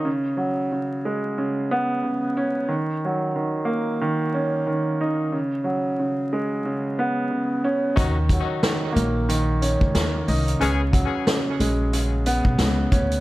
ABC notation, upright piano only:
X:1
M:4/4
L:1/8
Q:"Swing 16ths" 1/4=91
K:Dbmix
V:1 name="Upright piano" clef=bass
D, G, D, A, D, C D, D | E, G, E, B, E, D E, E | D, G, D, A, D, C D, D | E, G, E, B, E, D E, E |
D, G, D, A, D, C D, D |]